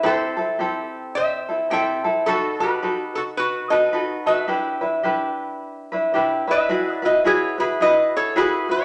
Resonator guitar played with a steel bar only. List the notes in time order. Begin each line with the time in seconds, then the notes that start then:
0.03 A4 C5
1.15 C5 E5
1.71 E5 G5
2.26 F#4 A4
2.60 G4 B4
3.15 F#4 A4
3.37 F#4 B4
3.70 B4 D#5
4.27 B4 E5
6.51 B4 E5
6.95 D5
7.05 B4 D#5
7.26 G#4 C#5
7.60 G#4 B4
7.82 B4 D#5
8.17 A4 C#5
8.38 G#4 B4
8.71 B4 D#5